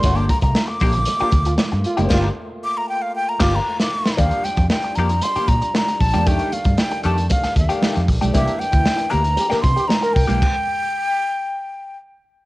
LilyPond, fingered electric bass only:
\new Staff \with { instrumentName = "Fingered electric bass" } { \clef bass \time 4/4 \key g \dorian \tempo 4 = 116 g,,8 r16 c,16 r8 bes,,8 r8 d,8 r16 g,16 r16 fis,,16 | g,,8 r2 g,,8 r4 | ees,16 r8 f,16 r8 f,8 r8 bes,16 r8. bes,,16 e,16 | f,16 r8 g,16 r8 f,8 r8 ees,16 r8 f,16 bes,,16 b,,16 |
c,16 r8 d,16 r8 d,8 r8 c16 r8. c,16 b,,16 | r1 | }